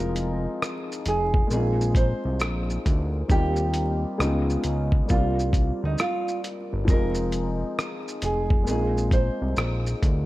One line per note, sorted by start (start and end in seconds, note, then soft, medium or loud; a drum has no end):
0.00 0.47 F1 loud
0.00 1.46 F3 medium
0.00 1.46 G#3 medium
0.00 1.48 C4 medium
0.00 1.49 D#4 medium
0.00 1.53 F4 medium
0.00 1.03 A#4 loud
0.16 closed hi-hat medium
0.16 shaker soft
0.62 cross-stick medium
0.62 shaker medium
0.92 shaker soft
1.06 1.44 F1 medium
1.06 1.48 G#4 medium
1.06 closed hi-hat medium
1.06 shaker medium
1.34 kick medium
1.47 2.13 A#1 loud
1.47 3.24 G#3 medium
1.47 3.26 A#3 soft
1.47 shaker medium
1.51 3.27 C4 medium
1.51 3.28 D#4 medium
1.51 1.92 G#4 medium
1.56 3.29 F4 medium
1.81 shaker soft
1.95 3.27 C5 medium
1.95 kick medium
1.95 closed hi-hat medium
1.95 shaker soft
2.25 2.42 C2 medium
2.40 2.78 A#1 medium
2.40 cross-stick loud
2.40 shaker medium
2.70 shaker soft
2.86 3.23 D2 loud
2.86 kick medium
2.86 closed hi-hat medium
2.86 shaker soft
3.29 4.05 D#2 medium
3.29 4.19 G3 medium
3.29 4.19 A#3 medium
3.29 4.20 C4 medium
3.29 4.20 D#4 medium
3.29 5.06 G4 loud
3.29 kick loud
3.29 shaker medium
3.33 4.21 F4 medium
3.56 shaker medium
3.74 closed hi-hat medium
3.74 shaker soft
4.18 4.57 C#2 loud
4.18 5.08 G#3 medium
4.18 5.09 B3 medium
4.18 5.09 C#4 medium
4.18 5.10 D#4 medium
4.18 cross-stick medium
4.18 shaker medium
4.22 5.10 F4 medium
4.50 shaker soft
4.64 5.02 C#2 medium
4.64 closed hi-hat medium
4.64 shaker medium
4.92 kick loud
5.06 6.83 G3 medium
5.06 6.84 A#3 medium
5.06 shaker medium
5.10 5.72 C2 medium
5.10 6.85 C4 medium
5.10 6.86 D4 medium
5.10 5.80 F4 medium
5.10 kick loud
5.14 6.87 F4 medium
5.40 shaker soft
5.53 kick loud
5.53 closed hi-hat medium
5.53 shaker soft
5.83 5.96 D2 medium
5.83 5.98 D#4 medium
5.98 6.40 F4 medium
5.98 cross-stick loud
5.98 shaker medium
6.28 shaker soft
6.44 closed hi-hat medium
6.44 shaker soft
6.73 6.90 G1 medium
6.85 7.64 F1 loud
6.85 8.62 F3 medium
6.85 8.62 G#3 medium
6.85 kick loud
6.85 shaker medium
6.89 8.64 C4 medium
6.89 8.65 D#4 medium
6.89 8.19 A#4 loud
6.93 8.66 F4 medium
7.15 shaker medium
7.32 closed hi-hat medium
7.32 shaker soft
7.79 cross-stick loud
7.79 shaker medium
8.08 shaker soft
8.22 8.69 F1 medium
8.22 8.64 G#4 medium
8.22 closed hi-hat medium
8.22 shaker medium
8.50 kick loud
8.64 9.30 A#1 loud
8.64 10.26 G#3 medium
8.64 10.26 A#3 medium
8.64 shaker medium
8.68 10.26 C4 medium
8.68 10.26 D#4 soft
8.68 9.09 G#4 medium
8.72 10.26 F4 medium
8.98 shaker soft
9.11 10.26 C5 medium
9.11 kick loud
9.11 closed hi-hat medium
9.11 shaker soft
9.42 9.54 C2 medium
9.56 9.95 A#1 medium
9.56 cross-stick loud
9.56 shaker medium
9.87 shaker soft
10.02 10.26 D2 medium
10.02 kick medium
10.02 closed hi-hat medium
10.02 shaker soft